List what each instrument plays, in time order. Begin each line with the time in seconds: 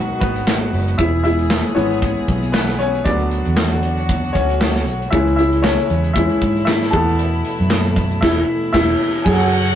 Already playing: fingered electric bass B1, string section D#3 G#3 B3 F#4, upright piano D#3 F#3 B3 D#4 B4 D#5
0.20 fingered electric bass G#1, upright piano B3 B4, kick, closed hi-hat
0.36 closed hi-hat
0.47 snare, clap
0.73 fingered electric bass F#1, open hi-hat
0.88 closed hi-hat
0.98 fingered electric bass E1, string section E3 G#4, upright piano E4 E5, kick, closed hi-hat
1.24 upright piano E4 E5, closed hi-hat
1.39 closed hi-hat
1.50 snare, clap
1.75 fingered electric bass G#1, upright piano E3 G#3 B3 C#4 C#5, closed hi-hat
1.90 closed hi-hat
2.02 kick, closed hi-hat
2.28 fingered electric bass B1, kick, closed hi-hat
2.43 closed hi-hat
2.52 upright piano B3 B4, snare, clap
2.69 snare
2.79 upright piano C#4 C#5, closed hi-hat
2.95 closed hi-hat
3.04 fingered electric bass D2, upright piano D3 F#3 B3 D4 D5, string section D3 F#3 F#4, kick, closed hi-hat
3.20 closed hi-hat
3.31 closed hi-hat
3.45 fingered electric bass E2, closed hi-hat
3.57 snare, clap
3.83 closed hi-hat
3.97 closed hi-hat
4.09 kick, closed hi-hat
4.24 closed hi-hat
4.33 fingered electric bass D2, upright piano C#4 C#5, kick, closed hi-hat
4.49 closed hi-hat
4.61 snare, clap
4.76 snare, closed hi-hat
4.87 fingered electric bass B1, closed hi-hat
5.02 closed hi-hat
5.11 fingered electric bass C#2, string section C#3 E3 G#3 E4, upright piano E3 G#3 C#4 E4 E5, kick, closed hi-hat
5.28 closed hi-hat
5.36 upright piano E4 E5, closed hi-hat
5.53 closed hi-hat
5.62 upright piano C#4 C#5, snare, clap
5.79 closed hi-hat
5.90 fingered electric bass E2, closed hi-hat
6.04 closed hi-hat
6.14 upright piano E3 G#3 C#4 E4 E5, kick, closed hi-hat
6.30 closed hi-hat
6.41 fingered electric bass G#2, kick, closed hi-hat
6.56 closed hi-hat
6.65 upright piano E4 E5, snare, clap
6.82 snare, closed hi-hat
6.91 fingered electric bass E2, string section B2 A3, upright piano E3 A3 B3 A4 A5, kick, closed hi-hat
7.08 closed hi-hat
7.19 closed hi-hat
7.33 closed hi-hat
7.45 closed hi-hat
7.59 fingered electric bass F#2, closed hi-hat
7.70 snare, clap
7.96 kick, closed hi-hat
8.11 closed hi-hat
8.21 fingered electric bass E1, upright piano E4 E5, kick, snare, crash
8.73 fingered electric bass E1, upright piano E4 E5, kick, snare, crash
9.24 fingered electric bass F#2, string section C#3 F#3 C#4 F#4, upright piano F#3 C#4 G#4 A4 G#5, violin section F#4 F#5, kick, crash
9.40 closed hi-hat
9.52 closed hi-hat
9.66 closed hi-hat